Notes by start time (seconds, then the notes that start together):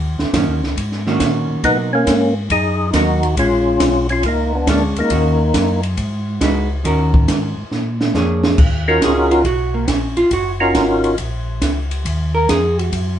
Already playing: D#2
0.18 D#2, snare
0.33 F#2 D#3 A#3 C#4 F#4, kick, snare, hi-hat pedal, ride
0.47 D#2
0.62 C#2, snare
0.77 G#2, kick, ride
0.92 snare
1.07 D#3 A#3 C#4 F#4, snare
1.20 A#2, kick, snare, hi-hat pedal, ride
1.50 A#2
1.63 B2 F#3 A#3 B3 D#4, kick, ride
1.93 A#3 C#4
2.06 G#2, kick, snare, hi-hat pedal, ride
2.50 F#2 D#4 G#4, kick, ride
2.90 D#2 F#3 A#3 D#4, kick, snare, hi-hat pedal, ride
2.96 D#4 F#4
3.23 ride
3.36 A#1 G#3 C#4 F4, kick, ride
3.80 B1, kick, snare, hi-hat pedal, ride
4.09 C#4 F4, ride
4.23 C#2 A#3, kick, ride
4.28 D#4
4.55 B3 D4
4.67 D2 G#3 A#3 C#4 D4, kick, snare, hi-hat pedal, ride
4.71 D4
4.95 D2 A#3, ride
5.00 D#4
5.10 D#2 D#3 A#3 C#4 F#4, kick, ride
5.54 F#2, kick, snare, hi-hat pedal, ride
5.83 ride
5.97 G#2, kick, ride
6.41 C#2 G#3 D#4 F#4 B4, kick, snare, hi-hat pedal, ride
6.84 D#2 D#3 C#4 F#4 A#4, kick, ride
7.14 kick
7.28 G#2, kick, snare, hi-hat pedal, ride
7.57 G#2
7.71 A#2, snare
8.01 snare
8.14 F2 A#3 D4 G#4 C#5, snare, hi-hat pedal
8.44 snare
8.58 D#2, kick, crash
8.88 C#4 D#4 F4 F#4 A#4
9.02 C#2 G#4, kick, snare, hi-hat pedal, ride
9.31 F4, ride
9.44 B1 F#4, kick, ride
9.74 A#3
9.88 A#1 C#4, kick, snare, hi-hat pedal, ride
10.17 A#1 F4, ride
10.31 F#1 F#4, kick, ride
10.60 C#4 D#4 F4 F#4 A#4
10.74 G#1, kick, snare, hi-hat pedal, ride
11.04 ride
11.18 A#1, kick, ride
11.62 C#2, kick, snare, hi-hat pedal, ride
11.91 ride
12.05 D#2, kick, ride
12.35 A#4
12.49 F2 G#4, kick, snare, hi-hat pedal, ride
12.79 F#4, ride
12.92 F#2, kick, ride